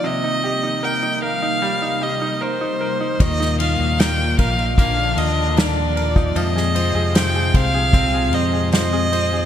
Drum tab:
RD |----------------|x-x-x-xxx-x-x-x-|x-x-x-x-x-x-x-x-|
SD |----------------|-o--o-------o---|-o--o-------o---|
BD |----------------|o-----o-o------o|------o-o-------|